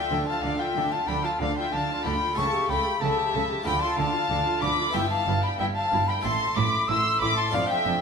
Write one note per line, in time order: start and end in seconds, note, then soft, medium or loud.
0.00 2.31 A3 medium
0.00 0.11 F4 medium
0.00 2.31 F4 medium
0.00 2.32 D5 medium
0.00 0.26 E5 medium
0.00 0.26 G5 loud
0.00 0.28 G5 medium
0.10 0.18 D2 medium
0.10 0.40 D3 medium
0.10 0.19 D3 medium
0.10 0.27 D4 medium
0.26 0.43 F4 medium
0.26 0.42 F5 medium
0.26 0.44 A5 medium
0.26 0.43 A5 medium
0.43 0.51 D2 medium
0.43 0.51 D3 medium
0.43 0.72 D3 medium
0.43 0.58 D4 medium
0.43 0.59 D5 medium
0.43 0.61 F5 medium
0.43 0.59 F5 loud
0.59 0.75 F4 medium
0.59 0.91 E5 medium
0.59 0.91 G5 medium
0.59 0.94 G5 medium
0.75 0.83 D2 medium
0.75 0.83 D3 medium
0.75 1.05 D3 medium
0.75 0.91 D4 medium
0.92 1.08 F4 medium
0.92 1.08 F5 medium
0.92 1.10 A5 medium
0.92 1.08 A5 medium
1.08 1.16 D2 medium
1.08 1.16 D3 medium
1.08 1.37 D3 medium
1.08 1.23 D4 medium
1.08 1.24 G5 medium
1.08 1.15 B5 loud
1.08 1.26 B5 loud
1.24 1.40 F4 medium
1.24 1.40 F5 medium
1.24 1.42 A5 medium
1.24 1.31 A5 medium
1.40 1.49 D2 medium
1.40 1.49 D3 medium
1.40 1.70 D3 medium
1.40 1.57 D4 medium
1.40 1.56 D5 medium
1.40 1.56 F5 medium
1.40 1.56 F5 loud
1.57 1.73 F4 medium
1.57 1.72 E5 medium
1.57 1.74 G5 medium
1.57 1.73 G5 loud
1.73 1.81 D2 medium
1.73 1.81 D3 medium
1.73 2.02 D3 medium
1.73 1.88 D4 medium
1.73 2.05 F5 medium
1.73 2.05 A5 medium
1.73 2.05 A5 loud
1.89 2.05 F4 medium
2.04 2.13 D2 medium
2.04 2.13 D3 medium
2.04 2.34 D3 medium
2.04 2.21 D4 medium
2.04 2.37 G5 medium
2.04 2.37 B5 loud
2.04 2.39 B5 medium
2.21 2.37 F4 medium
2.33 2.45 C#2 medium
2.33 2.45 C#3 medium
2.33 3.60 A3 medium
2.33 3.61 G4 medium
2.33 2.52 A4 medium
2.33 3.61 E5 medium
2.33 2.69 A5 loud
2.33 2.72 C#6 loud
2.37 2.66 C#3 medium
2.37 2.69 C#6 loud
2.53 2.69 G4 medium
2.69 2.77 C#2 medium
2.69 2.77 C#3 medium
2.69 2.98 C#3 medium
2.69 2.85 A4 medium
2.69 3.01 G5 medium
2.69 3.01 B5 loud
2.69 3.03 B5 medium
2.85 3.01 G4 medium
3.01 3.09 C#2 medium
3.01 3.30 C#3 medium
3.01 3.10 C#3 medium
3.01 3.16 A4 medium
3.01 3.64 E5 medium
3.01 3.43 A5 medium
3.01 3.09 A5 medium
3.09 3.17 B5 medium
3.18 3.33 G4 medium
3.18 3.25 A5 medium
3.26 3.33 B5 medium
3.33 3.41 C#2 medium
3.33 3.62 C#3 medium
3.33 3.42 C#3 medium
3.33 3.49 A4 medium
3.33 3.41 A5 medium
3.42 3.49 B5 medium
3.49 3.65 G4 medium
3.49 3.66 A5 loud
3.62 3.74 D2 medium
3.62 3.74 D3 medium
3.62 4.89 A3 medium
3.62 3.81 D4 medium
3.62 4.89 F4 medium
3.62 4.90 D5 medium
3.62 3.81 G5 loud
3.62 3.83 B5 loud
3.66 3.95 D3 medium
3.66 3.82 B5 loud
3.81 3.98 F4 medium
3.81 3.97 A5 medium
3.81 4.00 C6 medium
3.81 3.98 C6 loud
3.97 4.06 D2 medium
3.97 4.06 D3 medium
3.97 4.27 D3 medium
3.97 4.14 D4 medium
3.97 4.62 F5 loud
3.97 4.61 A5 loud
3.97 4.64 A5 medium
4.14 4.30 F4 medium
4.30 4.38 D2 medium
4.30 4.59 D3 medium
4.30 4.38 D3 medium
4.30 4.45 D4 medium
4.46 4.62 F4 medium
4.62 4.70 D2 medium
4.62 4.70 D3 medium
4.62 4.91 D3 medium
4.62 4.78 D4 medium
4.62 4.94 B5 loud
4.62 4.94 D6 medium
4.62 4.94 D6 loud
4.78 4.94 F4 medium
4.89 6.18 B3 medium
4.89 6.18 E4 medium
4.89 6.19 E5 medium
4.94 5.02 G1 medium
4.94 5.23 G2 medium
4.94 5.02 G2 medium
4.94 5.02 E4 medium
4.94 5.10 E5 medium
4.94 5.10 G5 loud
5.10 5.42 F5 medium
5.10 5.42 A5 medium
5.10 5.42 A5 loud
5.27 5.35 G1 medium
5.27 5.35 G2 medium
5.27 5.56 G2 medium
5.27 5.35 E4 medium
5.43 5.59 G5 medium
5.43 5.49 B5 medium
5.43 5.60 B5 medium
5.59 5.68 G1 medium
5.59 5.67 G2 medium
5.59 5.89 G2 medium
5.59 5.68 E4 medium
5.59 5.65 E5 medium
5.59 5.65 G5 loud
5.59 5.66 G5 loud
5.75 6.07 F5 medium
5.75 6.09 A5 medium
5.75 6.07 A5 medium
5.92 6.00 G1 medium
5.92 6.00 G2 medium
5.92 6.21 G2 medium
5.92 6.00 E4 medium
6.07 6.24 G5 medium
6.07 6.23 B5 medium
6.07 6.15 B5 loud
6.20 7.47 A3 medium
6.20 7.48 E4 medium
6.20 7.49 E5 medium
6.20 6.56 A5 medium
6.24 6.32 A1 medium
6.24 6.32 A2 medium
6.24 6.53 A2 medium
6.24 6.32 E4 medium
6.24 6.55 C6 loud
6.24 6.56 C6 loud
6.56 6.65 A1 medium
6.56 6.64 A2 medium
6.56 6.85 A2 medium
6.56 6.65 E4 medium
6.56 6.88 B5 medium
6.56 6.90 D6 loud
6.56 6.89 D6 loud
6.88 6.97 A1 medium
6.88 7.18 A2 medium
6.88 6.97 A2 medium
6.88 6.97 E4 medium
6.88 7.20 C6 loud
6.88 7.21 E6 loud
6.88 7.20 E6 loud
7.20 7.29 A1 medium
7.20 7.50 A2 medium
7.20 7.29 A2 medium
7.20 7.29 E4 medium
7.20 7.37 B5 loud
7.20 7.37 D6 loud
7.20 7.27 D6 medium
7.36 7.53 A5 medium
7.36 7.43 C6 medium
7.36 7.54 C6 loud
7.49 8.01 A3 medium
7.49 8.01 F4 medium
7.49 8.01 D5 medium
7.53 7.61 F1 medium
7.53 7.61 F2 medium
7.53 7.82 F2 medium
7.53 7.61 D4 medium
7.53 7.69 D5 loud
7.53 7.69 F5 loud
7.53 7.60 F5 loud
7.69 8.01 E5 medium
7.69 8.01 G5 loud
7.69 8.01 G5 medium
7.85 7.93 F1 medium
7.85 7.93 F2 medium
7.85 8.01 F2 medium
7.85 7.94 D4 medium